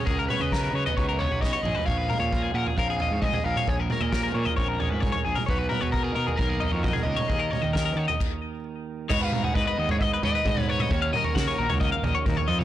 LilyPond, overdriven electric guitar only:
\new Staff \with { instrumentName = "Overdriven electric guitar" } { \time 4/4 \key ees \minor \tempo 4 = 133 bes'8 ces''2 des''8 ees''4 | f''4. ges''8 f''4 ees''8 f''8 | des''8 bes'2. r8 | ces''8 ces''8 bes'4 bes'4. ees''8~ |
ees''2. r4 | ees''16 f''8 ges''16 ees''16 ees''8 des''16 ees''8 ees''4 des''8~ | des''8 bes'2. r8 | }